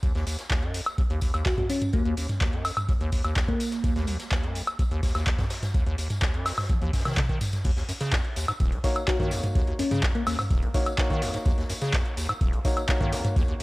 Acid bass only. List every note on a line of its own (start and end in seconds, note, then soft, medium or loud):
0.03 0.13 D#2 medium
0.15 0.25 D#2 loud
0.51 0.64 D#2 medium
0.63 0.76 F#2 loud
0.74 0.81 F2 loud
0.98 1.02 D#2 medium
1.10 1.20 D#2 loud
1.22 1.32 D#2 medium
1.34 1.44 D#2 loud
1.58 1.64 F#2 loud
1.93 2.03 D#2 medium
2.05 2.15 D#2 loud
2.17 2.27 D#2 medium
2.41 2.55 D#2 medium
2.53 2.66 F#2 medium
2.65 2.71 F2 loud
2.89 2.93 D#2 medium
3.01 3.10 D#2 loud
3.24 3.34 D#2 loud
3.48 3.55 F#2 loud
3.84 3.94 D#2 medium
3.96 4.06 D#2 loud
4.08 4.18 D#2 medium
4.31 4.45 D#2 medium
4.43 4.57 F#2 loud
4.55 4.62 F2 loud
4.79 4.83 D#2 medium
4.91 5.01 D#2 loud
5.15 5.25 D#2 loud
5.39 5.45 F#2 medium
5.74 5.84 D#2 medium
5.86 5.96 D#2 loud
5.98 6.08 D#2 medium
6.22 6.36 D#2 medium
6.34 6.47 F#2 medium
6.46 6.52 F2 loud
6.70 6.74 D#2 medium
6.82 6.91 D#2 loud
6.93 7.03 F#2 medium
7.05 7.19 D#3 medium
7.17 7.24 C#3 medium
7.29 7.39 D#3 medium
7.65 7.71 D#2 loud
7.77 7.83 D#2 medium
7.89 7.93 F#2 medium
8.01 8.14 C#3 loud
8.12 8.22 D#2 medium
8.36 8.46 D#2 medium
8.48 8.52 G#2 medium
8.60 8.74 D#1 loud
8.72 8.79 D#2 medium
9.20 9.33 D#3 loud
9.32 9.41 D#2 medium
9.44 9.47 G#2 medium
9.55 9.62 D#2 loud
9.67 9.74 D#2 medium
9.79 9.83 F#2 medium
9.91 10.04 C#3 loud
10.03 10.13 D#2 medium
10.27 10.37 D#2 medium
10.39 10.43 G#2 medium
10.51 10.64 D#1 loud
10.63 10.69 D#2 medium
11.10 11.23 D#3 loud
11.22 11.32 D#2 medium
11.34 11.38 G#2 medium
11.46 11.52 D#2 loud
11.58 11.64 D#2 medium
11.70 11.74 F#2 medium
11.82 11.95 C#3 loud
11.93 12.03 D#2 medium
12.17 12.27 D#2 medium
12.29 12.33 G#2 medium
12.41 12.55 D#1 loud
12.53 12.60 D#2 medium
13.01 13.14 D#3 loud
13.12 13.22 D#2 medium
13.24 13.28 G#2 medium
13.36 13.43 D#2 loud
13.48 13.55 D#2 medium